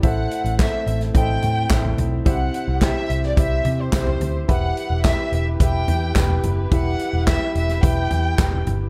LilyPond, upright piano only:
<<
  \new Staff \with { instrumentName = "Upright piano" } { \time 4/4 \key e \minor \tempo 4 = 108 <e' a' c'' e''>4 <e' a' c'' fis''>4 <e' a' c'' dis'' e''>4 <e' a' c'' e''>4 | <e' g' c'' e''>4 <e' g' c'' g''>4 <e' g' c'' e''>4 <e' g' c'' e''>4 | <e' g' b' e''>4 <e' g' b' g''>4 <e' g' b' e''>4 <e' g' b' g''>4 | <e' g' b' e''>4 <e' g' b' g''>4 <e' g' b' e''>4 <e' g' b' g''>4 | }
  \new Staff \with { instrumentName = "Upright piano" } { \clef bass \time 4/4 \key e \minor a,4. r2 r8 | c4. r2 r8 | e4. r2 r8 | e4. r2 r8 | }
>>